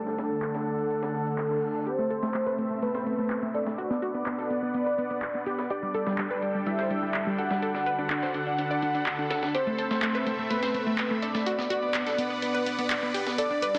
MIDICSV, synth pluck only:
0, 0, Header, 1, 2, 480
1, 0, Start_track
1, 0, Tempo, 480000
1, 1865, Time_signature, 4, 2, 24, 8
1, 13786, End_track
2, 0, Start_track
2, 0, Title_t, "Synth pluck"
2, 0, Program_c, 0, 84
2, 1864, Note_on_c, 0, 67, 94
2, 1944, Note_off_c, 0, 67, 0
2, 1986, Note_on_c, 0, 57, 64
2, 2063, Note_off_c, 0, 57, 0
2, 2104, Note_on_c, 0, 69, 87
2, 2184, Note_off_c, 0, 69, 0
2, 2226, Note_on_c, 0, 57, 59
2, 2304, Note_off_c, 0, 57, 0
2, 2345, Note_on_c, 0, 57, 60
2, 2424, Note_off_c, 0, 57, 0
2, 2465, Note_on_c, 0, 71, 92
2, 2543, Note_off_c, 0, 71, 0
2, 2584, Note_on_c, 0, 57, 61
2, 2664, Note_off_c, 0, 57, 0
2, 2706, Note_on_c, 0, 57, 60
2, 2784, Note_off_c, 0, 57, 0
2, 2823, Note_on_c, 0, 57, 64
2, 2904, Note_off_c, 0, 57, 0
2, 2945, Note_on_c, 0, 72, 90
2, 3023, Note_off_c, 0, 72, 0
2, 3064, Note_on_c, 0, 57, 62
2, 3144, Note_off_c, 0, 57, 0
2, 3185, Note_on_c, 0, 57, 66
2, 3263, Note_off_c, 0, 57, 0
2, 3426, Note_on_c, 0, 57, 61
2, 3503, Note_off_c, 0, 57, 0
2, 3544, Note_on_c, 0, 69, 88
2, 3624, Note_off_c, 0, 69, 0
2, 3665, Note_on_c, 0, 57, 61
2, 3743, Note_off_c, 0, 57, 0
2, 3782, Note_on_c, 0, 66, 94
2, 3863, Note_off_c, 0, 66, 0
2, 3905, Note_on_c, 0, 59, 63
2, 3983, Note_off_c, 0, 59, 0
2, 4022, Note_on_c, 0, 66, 92
2, 4103, Note_off_c, 0, 66, 0
2, 4144, Note_on_c, 0, 59, 61
2, 4223, Note_off_c, 0, 59, 0
2, 4263, Note_on_c, 0, 59, 61
2, 4344, Note_off_c, 0, 59, 0
2, 4385, Note_on_c, 0, 69, 95
2, 4463, Note_off_c, 0, 69, 0
2, 4504, Note_on_c, 0, 59, 60
2, 4584, Note_off_c, 0, 59, 0
2, 4625, Note_on_c, 0, 59, 61
2, 4703, Note_off_c, 0, 59, 0
2, 4743, Note_on_c, 0, 59, 62
2, 4824, Note_off_c, 0, 59, 0
2, 4864, Note_on_c, 0, 71, 92
2, 4943, Note_off_c, 0, 71, 0
2, 4983, Note_on_c, 0, 59, 59
2, 5064, Note_off_c, 0, 59, 0
2, 5106, Note_on_c, 0, 59, 66
2, 5184, Note_off_c, 0, 59, 0
2, 5347, Note_on_c, 0, 59, 60
2, 5424, Note_off_c, 0, 59, 0
2, 5464, Note_on_c, 0, 67, 86
2, 5544, Note_off_c, 0, 67, 0
2, 5587, Note_on_c, 0, 59, 57
2, 5664, Note_off_c, 0, 59, 0
2, 5703, Note_on_c, 0, 67, 88
2, 5784, Note_off_c, 0, 67, 0
2, 5827, Note_on_c, 0, 55, 61
2, 5904, Note_off_c, 0, 55, 0
2, 5945, Note_on_c, 0, 69, 91
2, 6025, Note_off_c, 0, 69, 0
2, 6067, Note_on_c, 0, 55, 61
2, 6144, Note_off_c, 0, 55, 0
2, 6185, Note_on_c, 0, 55, 62
2, 6265, Note_off_c, 0, 55, 0
2, 6307, Note_on_c, 0, 71, 93
2, 6384, Note_off_c, 0, 71, 0
2, 6424, Note_on_c, 0, 55, 64
2, 6504, Note_off_c, 0, 55, 0
2, 6546, Note_on_c, 0, 55, 63
2, 6624, Note_off_c, 0, 55, 0
2, 6664, Note_on_c, 0, 55, 64
2, 6744, Note_off_c, 0, 55, 0
2, 6786, Note_on_c, 0, 72, 97
2, 6864, Note_off_c, 0, 72, 0
2, 6904, Note_on_c, 0, 55, 63
2, 6984, Note_off_c, 0, 55, 0
2, 7027, Note_on_c, 0, 55, 65
2, 7104, Note_off_c, 0, 55, 0
2, 7267, Note_on_c, 0, 55, 60
2, 7344, Note_off_c, 0, 55, 0
2, 7384, Note_on_c, 0, 69, 83
2, 7464, Note_off_c, 0, 69, 0
2, 7506, Note_on_c, 0, 55, 60
2, 7584, Note_off_c, 0, 55, 0
2, 7624, Note_on_c, 0, 69, 91
2, 7704, Note_off_c, 0, 69, 0
2, 7745, Note_on_c, 0, 62, 62
2, 7823, Note_off_c, 0, 62, 0
2, 7864, Note_on_c, 0, 71, 87
2, 7944, Note_off_c, 0, 71, 0
2, 7986, Note_on_c, 0, 62, 61
2, 8064, Note_off_c, 0, 62, 0
2, 8105, Note_on_c, 0, 62, 61
2, 8185, Note_off_c, 0, 62, 0
2, 8227, Note_on_c, 0, 72, 87
2, 8304, Note_off_c, 0, 72, 0
2, 8346, Note_on_c, 0, 62, 59
2, 8425, Note_off_c, 0, 62, 0
2, 8467, Note_on_c, 0, 62, 62
2, 8544, Note_off_c, 0, 62, 0
2, 8585, Note_on_c, 0, 62, 62
2, 8665, Note_off_c, 0, 62, 0
2, 8707, Note_on_c, 0, 74, 88
2, 8784, Note_off_c, 0, 74, 0
2, 8825, Note_on_c, 0, 62, 62
2, 8905, Note_off_c, 0, 62, 0
2, 8948, Note_on_c, 0, 62, 67
2, 9024, Note_off_c, 0, 62, 0
2, 9187, Note_on_c, 0, 62, 60
2, 9264, Note_off_c, 0, 62, 0
2, 9305, Note_on_c, 0, 69, 90
2, 9385, Note_off_c, 0, 69, 0
2, 9428, Note_on_c, 0, 62, 59
2, 9504, Note_off_c, 0, 62, 0
2, 9546, Note_on_c, 0, 67, 92
2, 9625, Note_off_c, 0, 67, 0
2, 9668, Note_on_c, 0, 57, 64
2, 9745, Note_off_c, 0, 57, 0
2, 9784, Note_on_c, 0, 69, 87
2, 9864, Note_off_c, 0, 69, 0
2, 9907, Note_on_c, 0, 57, 61
2, 9984, Note_off_c, 0, 57, 0
2, 10026, Note_on_c, 0, 57, 64
2, 10106, Note_off_c, 0, 57, 0
2, 10149, Note_on_c, 0, 71, 89
2, 10225, Note_off_c, 0, 71, 0
2, 10266, Note_on_c, 0, 57, 64
2, 10345, Note_off_c, 0, 57, 0
2, 10388, Note_on_c, 0, 57, 60
2, 10465, Note_off_c, 0, 57, 0
2, 10505, Note_on_c, 0, 57, 64
2, 10585, Note_off_c, 0, 57, 0
2, 10626, Note_on_c, 0, 72, 95
2, 10704, Note_off_c, 0, 72, 0
2, 10745, Note_on_c, 0, 57, 62
2, 10825, Note_off_c, 0, 57, 0
2, 10867, Note_on_c, 0, 57, 66
2, 10944, Note_off_c, 0, 57, 0
2, 11108, Note_on_c, 0, 57, 62
2, 11184, Note_off_c, 0, 57, 0
2, 11225, Note_on_c, 0, 69, 86
2, 11305, Note_off_c, 0, 69, 0
2, 11346, Note_on_c, 0, 57, 61
2, 11424, Note_off_c, 0, 57, 0
2, 11464, Note_on_c, 0, 66, 89
2, 11544, Note_off_c, 0, 66, 0
2, 11586, Note_on_c, 0, 59, 65
2, 11664, Note_off_c, 0, 59, 0
2, 11703, Note_on_c, 0, 66, 93
2, 11784, Note_off_c, 0, 66, 0
2, 11825, Note_on_c, 0, 59, 62
2, 11903, Note_off_c, 0, 59, 0
2, 11944, Note_on_c, 0, 59, 60
2, 12024, Note_off_c, 0, 59, 0
2, 12065, Note_on_c, 0, 69, 88
2, 12143, Note_off_c, 0, 69, 0
2, 12183, Note_on_c, 0, 59, 60
2, 12264, Note_off_c, 0, 59, 0
2, 12304, Note_on_c, 0, 59, 60
2, 12383, Note_off_c, 0, 59, 0
2, 12423, Note_on_c, 0, 59, 60
2, 12504, Note_off_c, 0, 59, 0
2, 12546, Note_on_c, 0, 71, 96
2, 12624, Note_off_c, 0, 71, 0
2, 12664, Note_on_c, 0, 59, 65
2, 12744, Note_off_c, 0, 59, 0
2, 12786, Note_on_c, 0, 59, 69
2, 12864, Note_off_c, 0, 59, 0
2, 13026, Note_on_c, 0, 59, 59
2, 13104, Note_off_c, 0, 59, 0
2, 13143, Note_on_c, 0, 67, 85
2, 13224, Note_off_c, 0, 67, 0
2, 13266, Note_on_c, 0, 59, 59
2, 13343, Note_off_c, 0, 59, 0
2, 13383, Note_on_c, 0, 69, 88
2, 13464, Note_off_c, 0, 69, 0
2, 13505, Note_on_c, 0, 62, 61
2, 13583, Note_off_c, 0, 62, 0
2, 13624, Note_on_c, 0, 71, 89
2, 13704, Note_off_c, 0, 71, 0
2, 13745, Note_on_c, 0, 62, 62
2, 13786, Note_off_c, 0, 62, 0
2, 13786, End_track
0, 0, End_of_file